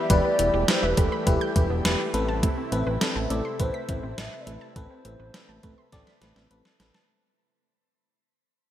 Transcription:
Already playing: analog synth pad E3 G3 G4
0.10 analog synth bass E1, synth arpeggio sound E3, analog synth pad A3, fm electric piano E4 G4 B4, soft synth lead D5, kick, closed hi-hat
0.25 synth arpeggio sound B3
0.39 analog synth bass E1, synth arpeggio sound E3, fm electric piano E4 G4 B4, closed hi-hat
0.54 analog synth bass E1, synth arpeggio sound G4
0.68 synth arpeggio sound E3, fm electric piano E4 G4 B4, soft synth lead C5, snare, closed hi-hat
0.83 analog synth bass E1, soft synth lead B4, synth arpeggio sound E5
0.97 analog synth bass E1, synth arpeggio sound E3, fm electric piano E4 G4 B4, soft synth lead A4, kick, closed hi-hat
1.12 synth arpeggio sound B5
1.27 analog synth bass E1, synth arpeggio sound E3, fm electric piano E4 G4 B4, kick, closed hi-hat
1.41 synth arpeggio sound G6
1.56 analog synth bass E1, synth arpeggio sound E3, fm electric piano E4 G4 B4, kick, closed hi-hat
1.70 analog synth bass E1, synth arpeggio sound B3
1.85 analog synth bass E1, fm electric piano E4 G4 B4, snare, closed hi-hat
1.99 synth arpeggio sound G4
2.14 analog synth bass A1, analog synth pad C3 C4 E4, synth arpeggio sound A3, fm electric piano C4 A4 B4, closed hi-hat
2.28 synth arpeggio sound A5
2.43 synth arpeggio sound A3, kick, closed hi-hat
2.58 synth arpeggio sound C4
2.72 analog synth bass A1, synth arpeggio sound A3, fm electric piano C4 A4 B4, closed hi-hat
2.87 analog synth bass A1, synth arpeggio sound B4
3.01 synth arpeggio sound A3, fm electric piano C4 A4 B4, snare, closed hi-hat
3.16 analog synth bass A1, synth arpeggio sound A5
3.30 analog synth bass A1, synth arpeggio sound A3, fm electric piano C4 A4 D5, soft synth lead A4, closed hi-hat
3.45 synth arpeggio sound C6
3.59 analog synth bass A1, synth arpeggio sound A3, fm electric piano C4 A4 B4, soft synth lead C5, kick, closed hi-hat
3.74 synth arpeggio sound B6
3.88 analog synth bass A1, synth arpeggio sound A3, fm electric piano C4 A4 B4, kick, closed hi-hat
4.03 analog synth bass A1, synth arpeggio sound C4
4.18 analog synth bass A1, fm electric piano C4 A4 B4, soft synth lead E5, snare, closed hi-hat
4.32 synth arpeggio sound B4
4.40 soft synth lead D5
4.47 analog synth bass A1, synth arpeggio sound A3, fm electric piano C4 A4 B4, soft synth lead C5, closed hi-hat
4.61 synth arpeggio sound A5
4.76 analog synth bass A1, synth arpeggio sound A3, fm electric piano C4 A4 B4, kick, closed hi-hat
4.90 synth arpeggio sound C4
5.05 analog synth bass A1, synth arpeggio sound A3, fm electric piano C4 A4 B4, closed hi-hat
5.20 analog synth bass A1, synth arpeggio sound B4
5.34 synth arpeggio sound A3, fm electric piano C4 A4 B4, snare, closed hi-hat
5.49 analog synth bass A1, synth arpeggio sound A5
5.63 analog synth bass A1, synth arpeggio sound A3, fm electric piano C4 A4 B4, kick, closed hi-hat
5.78 synth arpeggio sound C6
5.92 analog synth bass A1, synth arpeggio sound A3, fm electric piano C4 A4 D5, kick, snare, closed hi-hat
6.07 synth arpeggio sound B6, snare
6.21 analog synth bass A1, synth arpeggio sound A3, fm electric piano C4 A4 B4, snare, closed hi-hat
6.36 analog synth bass A1, synth arpeggio sound C4, snare
6.51 analog synth bass A1, fm electric piano C4 A4 B4, closed hi-hat
6.65 synth arpeggio sound B4, snare
6.80 analog synth bass A1, synth arpeggio sound A3, fm electric piano C4 A4 B4, snare, closed hi-hat
6.94 synth arpeggio sound A5, snare

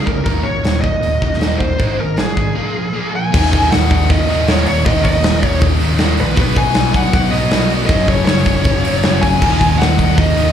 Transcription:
Already playing: tonewheel organ C#4 G#4 D#5
0.06 picked electric bass D2, distorted electric guitar C#3 G#3, lead electric guitar A#4, kick
0.25 picked electric bass D#1, distorted electric guitar D#2 A#2 D#3, tonewheel organ D#4 F#4 A#4, lead electric guitar A#4, kick, open hi-hat
0.43 picked electric bass A#1, distorted electric guitar D#2 A#2, lead electric guitar C#5
0.64 picked electric bass D#1, distorted electric guitar D#2 A#2, snare, open hi-hat
0.81 distorted electric guitar D#2 A#2, lead electric guitar D#5, kick
1.03 picked electric bass D#1, distorted electric guitar D#2 A#2, open hi-hat
1.22 picked electric bass D#1, distorted electric guitar D#2 A#2, kick
1.33 snare
1.39 picked electric bass D#1, distorted electric guitar D#2 A#2 D#3, snare, open hi-hat
1.43 distorted electric guitar A#2
1.59 picked electric bass D#1, distorted electric guitar D#2 A#2, lead electric guitar C5, kick
1.78 picked electric bass G#1, distorted electric guitar G#2 D#3 G#3, tonewheel organ G#3, kick, open hi-hat
1.98 distorted electric guitar G#2 D#3, lead electric guitar A#4
2.17 picked electric bass G#1, distorted electric guitar G#2 D#3, lead electric guitar G#4, snare, open hi-hat
2.37 picked electric bass G#1, distorted electric guitar G#2 D#3, kick
2.55 distorted electric guitar A#2 F3 A#3, tonewheel organ A#3 F4
2.74 distorted electric guitar A#2 F3
2.93 distorted electric guitar A#2 F3 A#3
3.14 distorted electric guitar A#2 F3, lead electric guitar G#5
3.32 picked electric bass D#1, distorted electric guitar D#2 A#2 D#3, tonewheel organ D#4 A#4 F#5, kick, crash
3.53 picked electric bass D#1, kick, open hi-hat
3.71 picked electric bass D#1, lead electric guitar F#5, snare, open hi-hat
3.90 picked electric bass D#1, kick, open hi-hat
4.10 picked electric bass D#1, lead electric guitar D#5, kick, open hi-hat
4.29 picked electric bass D#1, distorted electric guitar D#2 A#2 D#3, open hi-hat
4.48 picked electric bass D#1, distorted electric guitar D#2 A#2 D#3, lead electric guitar C#5, snare, open hi-hat
4.66 picked electric bass D#1, lead electric guitar C#5, open hi-hat
4.86 picked electric bass D#1, distorted electric guitar D#2 A#2 D#3, lead electric guitar D#5, kick, open hi-hat
5.04 picked electric bass D#1, lead electric guitar D#5, kick, open hi-hat
5.24 picked electric bass D#1, snare, open hi-hat
5.43 picked electric bass D#1, lead electric guitar C#5, kick, open hi-hat
5.61 picked electric bass D#1, kick, open hi-hat
5.80 picked electric bass D#1, distorted electric guitar D#2 A#2 D#3, open hi-hat
5.98 picked electric bass D#1, distorted electric guitar D#2 A#2 D#3, snare, open hi-hat
6.17 picked electric bass A#1, lead electric guitar B4, open hi-hat
6.36 picked electric bass B1, distorted electric guitar B2 F#3 B3, tonewheel organ B3 F#4 C#5, kick, open hi-hat
6.41 lead electric guitar B4
6.56 picked electric bass B1, lead electric guitar G#5, kick, open hi-hat
6.74 picked electric bass B1, snare, open hi-hat
6.94 picked electric bass B1, lead electric guitar F#5, kick, open hi-hat
7.13 picked electric bass B1, lead electric guitar F#5, kick, open hi-hat
7.30 picked electric bass B1, distorted electric guitar B2 F#3 B3, lead electric guitar D#5, open hi-hat
7.50 picked electric bass B1, distorted electric guitar B2 F#3 B3, snare, open hi-hat
7.70 picked electric bass B1, open hi-hat
7.86 picked electric bass F#1, distorted electric guitar F#2 C#3, tonewheel organ F#3 C#4 G#4, lead electric guitar D#5, kick, open hi-hat
7.91 distorted electric guitar F#3
8.08 picked electric bass F#1, lead electric guitar C#5, kick, open hi-hat
8.25 lead electric guitar C#5, snare, open hi-hat
8.29 picked electric bass F#1
8.45 picked electric bass F#1, kick, open hi-hat
8.64 picked electric bass F#1, kick, open hi-hat
8.84 picked electric bass F#1, distorted electric guitar F#2 C#3 F#3, open hi-hat
9.03 picked electric bass F#1, distorted electric guitar F#2 C#3 F#3, snare, open hi-hat
9.21 picked electric bass F#1, lead electric guitar G#5, kick, open hi-hat
9.40 picked electric bass D#1, distorted electric guitar D#2 A#2 D#3, tonewheel organ A#4 F#5, kick, crash
9.44 tonewheel organ D#4
9.61 picked electric bass D#1, kick, open hi-hat
9.78 picked electric bass D#1, lead electric guitar F#5, snare, open hi-hat
9.99 picked electric bass D#1, kick, open hi-hat
10.18 picked electric bass D#1, lead electric guitar D#5, kick, open hi-hat
10.35 picked electric bass D#1, distorted electric guitar D#2 A#2 D#3, open hi-hat

